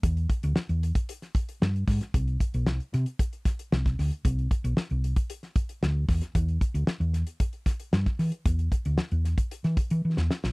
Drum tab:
HH |xxxx-xxxxxxx-xox|xxxx-xxxxxxx-xox|xxxx-xxxxxxx--ox|xxxx-xxxxxxx-xox|
SD |----o----o--o-oo|----o-o---o-ooo-|----o----o--o-oo|----o-o---o-ooo-|
BD |o-o----o--o---o-|o-o-----o-o--o--|o-o----o--o---o-|o-o-----o-o--o--|

HH |xxxx-xxxxxxx----|
SD |----o-o--o---ooo|
BD |o-o----o--o-----|